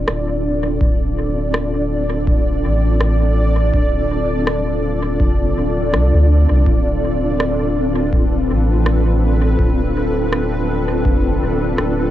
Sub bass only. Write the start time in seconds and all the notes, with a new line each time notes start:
0.08 D1
0.81 D1
2.64 A1
3.74 D1
5.20 F1
5.57 D1
5.93 C2
6.14 D2
6.51 C2
6.66 D1
8.50 A1
9.59 D1
11.05 F1
11.42 D1
11.78 D1